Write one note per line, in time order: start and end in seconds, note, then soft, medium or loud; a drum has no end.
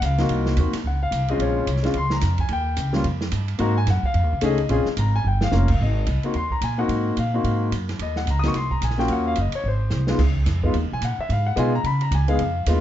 0.01 0.28 C#2 medium
0.01 0.29 F5 medium
0.01 hi-hat pedal medium
0.01 ride medium
0.18 0.55 A#3 medium
0.18 0.55 C4 medium
0.18 0.55 D#4 medium
0.18 0.56 F#4 medium
0.18 snare medium
0.18 ride soft
0.29 0.56 C2 medium
0.29 ride medium
0.46 snare medium
0.57 0.72 D#2 medium
0.57 0.72 A#3 medium
0.57 0.73 C4 medium
0.57 0.73 D#4 medium
0.57 0.73 F#4 medium
0.57 hi-hat pedal medium
0.57 ride medium
0.73 muted upright bass stroke soft
0.73 snare soft
0.73 ride medium
0.84 1.11 C#2 medium
0.84 1.02 F#5 medium
1.03 1.27 F5 medium
1.11 1.38 C2 medium
1.11 hi-hat pedal medium
1.11 ride medium
1.28 1.65 G#3 medium
1.28 1.66 C4 medium
1.28 1.66 C#4 medium
1.28 1.66 F4 medium
1.28 1.40 D#5 medium
1.28 ride soft
1.39 1.66 A#1 medium
1.39 1.82 C#5 medium
1.39 ride medium
1.67 1.94 C2 medium
1.67 hi-hat pedal medium
1.67 ride medium
1.76 snare soft
1.83 1.93 G#3 medium
1.83 1.93 C4 medium
1.83 1.94 C#4 medium
1.83 1.94 F4 medium
1.83 snare soft
1.83 ride soft
1.94 2.21 C#2 medium
1.94 2.12 C6 loud
1.94 ride medium
2.10 2.37 A#5 medium
2.10 snare medium
2.21 2.49 F2 medium
2.21 snare soft
2.21 hi-hat pedal medium
2.21 ride medium
2.38 2.50 G#5 medium
2.38 kick medium
2.38 ride soft
2.49 2.76 D#2 medium
2.49 ride medium
2.53 2.92 G5 medium
2.77 3.03 C#2 medium
2.77 hi-hat pedal medium
2.77 ride medium
2.93 3.03 G3 medium
2.93 3.03 A#3 medium
2.93 3.03 C#4 medium
2.93 3.04 F4 medium
2.93 snare medium
3.04 3.31 F2 medium
3.04 ride medium
3.21 snare medium
3.32 3.59 G2 medium
3.32 hi-hat pedal medium
3.32 ride medium
3.48 ride soft
3.58 3.86 G#2 medium
3.58 3.74 A#3 medium
3.58 3.74 C4 medium
3.58 3.75 D#4 medium
3.58 3.75 F#4 medium
3.58 3.77 A#5 medium
3.58 ride medium
3.77 3.87 G#5 loud
3.87 4.02 F#2 medium
3.87 4.05 F#5 medium
3.87 snare soft
3.87 hi-hat pedal medium
3.87 ride medium
4.03 4.40 F5 medium
4.03 muted upright bass stroke soft
4.03 kick medium
4.14 4.23 F2 medium
4.14 ride medium
4.23 4.32 D#2 medium
4.33 4.41 C#2 medium
4.41 4.68 C#2 medium
4.41 4.57 A3 medium
4.41 4.57 C#4 medium
4.41 4.57 D#4 medium
4.41 4.58 G#4 medium
4.41 hi-hat pedal medium
4.41 ride medium
4.45 4.85 D#5 medium
4.58 ride medium
4.69 4.85 A#1 medium
4.69 4.84 C4 medium
4.69 4.85 C#4 medium
4.69 4.85 F4 medium
4.69 4.85 G#4 medium
4.69 ride medium
4.85 muted upright bass stroke soft
4.85 snare soft
4.97 5.24 G#1 medium
4.97 5.14 A#5 medium
4.97 hi-hat pedal medium
4.97 ride medium
5.16 5.25 G#5 loud
5.24 5.51 G1 medium
5.24 5.42 G5 medium
5.41 5.78 F5 medium
5.41 snare medium
5.51 5.79 F1 loud
5.51 5.67 A#3 medium
5.51 5.67 C#4 medium
5.51 5.67 F4 medium
5.51 5.67 A#4 medium
5.51 snare medium
5.51 hi-hat pedal medium
5.68 kick medium
5.68 crash medium
5.79 6.06 G#1 medium
5.79 6.22 D#5 medium
6.07 6.22 C2 medium
6.07 hi-hat pedal medium
6.07 ride medium
6.23 6.34 A#3 medium
6.23 6.34 C4 medium
6.23 6.34 D#4 medium
6.23 6.34 F#4 medium
6.23 muted upright bass stroke soft
6.23 ride soft
6.34 6.61 D#2 medium
6.34 6.51 C6 medium
6.34 ride medium
6.51 6.62 A#5 medium
6.51 kick medium
6.61 6.88 A#2 medium
6.61 6.79 G#5 medium
6.61 hi-hat pedal medium
6.61 ride medium
6.78 7.14 A#3 medium
6.78 7.15 C4 medium
6.78 7.15 D#4 medium
6.78 7.15 F#4 medium
6.78 7.14 F#5 medium
6.88 7.16 G#2 medium
6.88 ride medium
7.17 7.43 A#2 medium
7.17 7.59 F5 medium
7.17 hi-hat pedal soft
7.17 ride medium
7.34 7.70 A#3 medium
7.34 7.70 C4 medium
7.34 7.70 D#4 medium
7.34 7.71 F#4 medium
7.44 7.71 G#2 medium
7.44 ride medium
7.71 7.98 F#2 medium
7.71 hi-hat pedal medium
7.71 ride medium
7.89 snare soft
7.89 ride medium
7.99 8.25 D#2 medium
7.99 8.17 D#5 medium
7.99 ride medium
8.16 8.27 F#5 medium
8.16 snare soft
8.26 8.53 C#2 medium
8.26 hi-hat pedal medium
8.26 ride medium
8.31 8.38 A#5 medium
8.39 8.47 D#6 loud
8.43 8.53 A#3 medium
8.43 8.54 C4 medium
8.43 8.54 D#4 medium
8.43 8.54 F#4 medium
8.43 snare medium
8.43 ride soft
8.48 8.55 C#6 medium
8.54 8.81 C2 medium
8.54 8.71 C6 medium
8.54 snare soft
8.54 ride medium
8.71 8.82 A#5 loud
8.71 kick medium
8.81 9.08 A#1 medium
8.81 8.99 G#5 medium
8.81 hi-hat pedal medium
8.81 ride medium
8.90 snare soft
8.98 9.34 A#3 medium
8.98 9.35 C#4 medium
8.98 9.35 F4 medium
8.98 9.35 F#4 medium
8.98 9.09 G5 medium
8.98 snare soft
9.08 9.36 D#2 medium
9.08 ride medium
9.13 9.27 F#5 medium
9.27 9.37 F5 medium
9.36 9.52 F#1 medium
9.36 hi-hat pedal medium
9.36 ride medium
9.40 9.55 D#5 medium
9.52 9.65 C#5 medium
9.52 muted upright bass stroke soft
9.52 ride medium
9.64 9.91 G#1 medium
9.68 10.17 C5 medium
9.90 10.18 C2 medium
9.90 snare medium
9.90 hi-hat pedal medium
10.07 10.18 G#3 medium
10.07 10.18 B3 medium
10.07 10.18 D#4 medium
10.07 10.19 F4 medium
10.07 snare medium
10.18 10.45 C#2 medium
10.18 kick medium
10.18 snare soft
10.18 crash medium
10.35 kick medium
10.46 10.73 F2 medium
10.46 snare soft
10.46 hi-hat pedal medium
10.46 ride medium
10.63 10.73 G#3 medium
10.63 10.73 B3 medium
10.63 10.74 D#4 medium
10.63 10.74 F4 medium
10.63 kick medium
10.74 10.85 D#2 medium
10.74 ride medium
10.84 10.92 C#2 medium
10.92 11.00 B1 medium
10.92 11.03 G#5 loud
11.01 11.17 A#2 medium
11.01 11.19 F#5 medium
11.01 hi-hat pedal medium
11.01 ride medium
11.18 11.30 E5 medium
11.18 muted upright bass stroke soft
11.29 11.56 G#2 medium
11.29 11.47 F5 medium
11.29 ride medium
11.47 11.57 F#5 medium
11.56 11.83 B2 medium
11.56 11.71 G#3 medium
11.56 11.71 B3 medium
11.56 11.72 D#4 medium
11.56 11.72 F4 medium
11.56 11.74 G#5 medium
11.56 hi-hat pedal medium
11.56 ride medium
11.75 11.85 A#5 loud
11.84 12.11 C#3 medium
11.84 12.01 B5 loud
11.84 ride medium
12.01 12.12 A#5 medium
12.01 ride medium
12.11 12.38 C#2 medium
12.11 12.29 G#5 medium
12.11 hi-hat pedal medium
12.11 ride medium
12.28 12.38 G#3 medium
12.28 12.38 B3 medium
12.28 12.39 D#4 medium
12.28 12.39 G#4 medium
12.28 12.64 F5 medium
12.28 ride soft
12.39 12.66 F2 medium
12.39 ride medium
12.66 12.80 D#2 medium
12.66 12.80 G#3 medium
12.66 12.80 B3 medium
12.66 12.80 D#4 medium
12.66 12.80 F4 medium
12.66 hi-hat pedal medium
12.66 ride medium